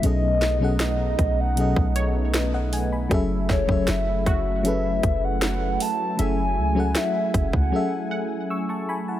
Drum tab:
HH |x---x-x-x-x-x-o-|x---x-x-x-x-x-o-|x---x-x---------|
SD |--o-o-------o---|--o-o-------o---|----o-----------|
BD |------o--o------|o-oo--o---o-----|------oo--------|